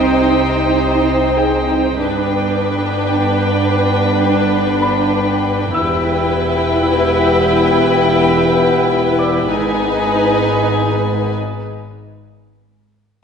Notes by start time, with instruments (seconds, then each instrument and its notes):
Already playing: double bass section C2, cello section C3, french horn section C4 D#4, viola section D#4, violin section C5 G5, grand piano G5, impact
1.37 grand piano G#4 G5
1.99 double bass section G1, cello section G2, french horn section B3 D4, viola section D4, violin section B4 G5
4.82 grand piano B5
5.74 double bass section E1, cello section E2, french horn section B3 G4, viola section E4, violin section B4 G5, grand piano E6
9.19 grand piano D5 D6
9.48 double bass section G#1, cello section G#2, french horn section B3 G#4, viola section D#4, violin section B4 G#5